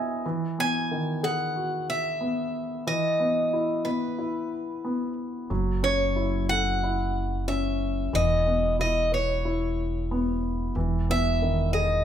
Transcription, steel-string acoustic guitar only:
0.60 G#5
1.24 F#5
1.90 E5
2.87 D#5
3.85 B4
5.84 C#5
6.49 F#5
7.48 E5
8.15 D#5
8.81 D#5
9.14 C#5
11.11 E5
11.73 D#5

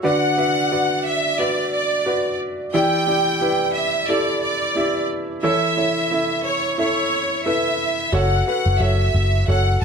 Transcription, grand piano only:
0.03 D3 F#4 B4 D5
0.38 F#4 B4 E5
0.72 F#4 B4 D5
1.39 F#4 B4 E5
2.06 F#4 B4 D5
2.74 E3 E4 G4 D5
3.07 E4 G4 D5
3.41 E4 G4 B4
4.09 E4 G4 A4
4.76 E4 G4 E5
5.43 E3 E4 A4 C#5
5.77 E4 A4 C#5
6.11 E4 A4 E5
6.78 E4 A4 E5
7.46 E4 A4 B4
8.12 F#4 A4 C#5
8.47 F#4 A4 B4
8.80 F#4 A4 C#5
9.48 F#4 A4 C#5

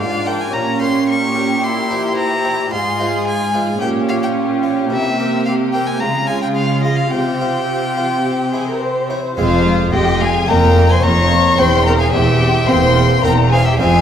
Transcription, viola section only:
0.00 D4
0.53 C#4
1.63 E4
2.72 F4
3.82 C#4
4.91 A#3
6.01 G#3
7.13 C4
9.37 G#3
9.65 G#3
9.93 G#3
10.21 G#3
10.48 A#3
10.75 A#3
11.02 A#3
11.30 A#3
11.58 C4
11.85 C4
12.14 C4
12.42 C4
12.68 C4
12.95 C4
13.24 C4
13.52 C4
13.79 C4

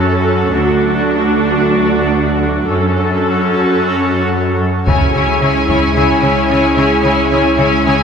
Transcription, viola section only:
Already playing: C#4 A4
0.55 D4 F#4
2.71 C#4 A4
4.87 C#4 E4
5.14 C#4 E4
5.41 C#4 E4
5.68 C#4 E4
5.95 C#4 E4
6.23 C#4 E4
6.50 C#4 E4
6.77 C#4 E4
7.04 C#4 E4
7.31 C#4 E4
7.58 C#4 E4
7.85 C#4 E4

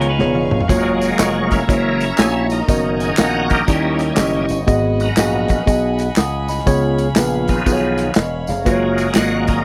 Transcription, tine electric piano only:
Already playing: C#3
0.19 B3 F4 G#4 C#5
0.68 A#3 F4 F#4 C#5
1.19 A3 F4 F#4 D#5
1.24 A#3
1.68 A#3 E4 F#4 C#5
2.18 A3 E4 F#4 C#5
2.24 A#3
2.68 B3 F#4 A#4 D#5
3.18 B3 F#4 A#4 F5
3.25 F#5
3.68 D#3 C#4 E4 G4 D5
3.74 D#5
4.17 C#4 E4 G4 D#5
4.67 G#2 B3 F#4 G#4 D#5
5.17 B3 F#4 G#4 D#5
5.66 B3 F#4 G#4 D#5
6.18 F#5 D#6
6.49 D#5 B5
6.66 C#3 B3 F4 G#4 C#5
7.17 B3 F4 G#4 B4
7.66 B3 F4 G#4 B4
7.73 C#5
8.16 D#5
8.49 G#4 F5
8.65 A#3 F4 F#4 B4
8.72 C#5
9.14 G#3 F4 F#4
9.19 A#3

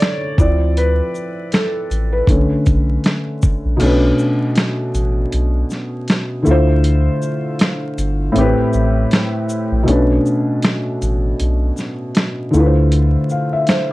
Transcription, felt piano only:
Already playing: A4 B4 C#5 D5
0.38 F3 C4 E4 D5
0.77 B4
1.53 A4
2.12 B4
2.29 D3 A3 C#4
3.77 B2 A3
3.81 C#4 D4
3.86 B4
6.43 D3 A3 E4
6.49 F4 C5
8.32 A2 A3
8.36 C4 G4 B4
9.83 B2 A3
9.87 C#4 D4 B4
12.51 D3 A3
12.55 E4 F4
12.60 B4
12.66 C5
13.31 F5
13.53 E5
13.69 C5

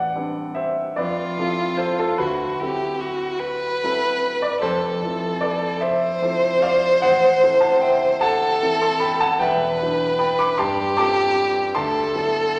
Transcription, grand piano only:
Already playing: A1 D5 F#5
0.15 G3 C4 D4 B4
0.55 C5 E5
0.96 F2 B4 D5
1.38 F3 C4 E4 A4
1.77 A4 C5
1.99 F4 A4
2.18 D2 F#4 B4
2.61 F#3 C4 E4 A4
3.83 F#3 C4 E4 A4
4.42 B4 D5
4.62 F1 F2 A4 C5
5.03 F3 C4 E4 A4
5.41 B4 D5
5.81 C5 E5
6.22 F3 C4 E4 A4
6.62 D5 F5
7.02 A1 C5 F#5
7.42 E3 C4 E4 A4
7.61 F#5 A5
7.81 E5 G5
8.21 F#5 A5
8.63 E3 C4 E4 A4
8.82 A5 C6
9.00 G5 B5
9.20 F#5 A5
9.39 E1 E2 E5 G5
9.82 F#3 D4 E4 B4
10.19 G5 B5
10.39 B5 D6
10.58 G2 A5 C6
10.97 G3 C4 F4 A4 A5 D6
11.75 D2 A5 C6
12.15 F#3 B3 E4 A4

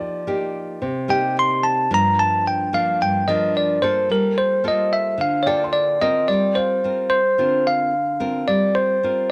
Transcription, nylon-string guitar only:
Already playing: F3 A#3 D#4 G4
0.27 A#3 D#4 G4
0.82 C3
1.08 A#3 D#4 G4
1.91 G2 F3 A#3 D4
2.73 F3 A#3 D4
3.02 G2
3.28 F3 A#3 D4
3.82 A#3 F4 A4
4.10 G3
4.64 A#3 F4 A4
5.18 D3
5.47 A#3 F4 A4
6.01 C4 F4 A#4
6.29 G3
6.84 C4 F4 A#4
7.38 D3 C4 F4 A#4
8.20 C4 F4 A#4
8.48 G3
9.03 C4 F4 A#4

